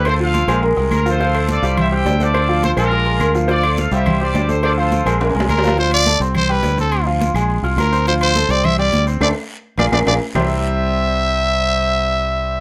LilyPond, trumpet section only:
\new Staff \with { instrumentName = "Trumpet section" } { \time 4/4 \key c \major \tempo 4 = 210 << { c''8 f''4. r4 bes'8 c''8~ | c''4 d''4 e''8 g''4 d''8~ | d''4 c''8 bes'2 r8 | d''4 f''8 e''4 d''4 c''8 |
d''8 c''4. r2 | r1 | r1 | r1 |
r1 | r1 | r1 | } \\ { <f' a'>8 <a' c''>4. r4. <f' a'>8~ | <f' a'>4 <f' a'>4 <g' c''>8 <c'' e''>4 <f' a'>8~ | <f' a'>4. <d' f'>2 r8 | <f' a'>4. <g' c''>4 g'4. |
<f' a'>8 <f' a'>4. r2 | r1 | r1 | r1 |
r1 | r1 | r1 | } >> }